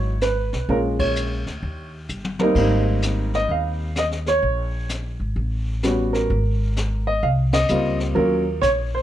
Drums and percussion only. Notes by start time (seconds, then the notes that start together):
0.21 snare, hi-hat pedal
0.53 snare
0.69 brush sweep
0.99 kick, ride
1.16 hi-hat pedal
1.47 snare
1.62 brush sweep
2.09 hi-hat pedal
2.24 mid tom
2.39 mid tom
2.55 brush sweep, kick, crash
3.02 snare, hi-hat pedal
3.33 snare
3.49 brush sweep
3.95 snare, hi-hat pedal
4.11 snare
4.26 snare
4.43 brush sweep
4.89 snare, hi-hat pedal
5.36 brush sweep
5.83 snare, hi-hat pedal
6.14 snare
6.30 brush sweep
6.76 snare, hi-hat pedal
7.23 brush sweep
7.53 snare, ride
7.68 hi-hat pedal
8.00 snare
8.16 brush sweep
8.62 snare, hi-hat pedal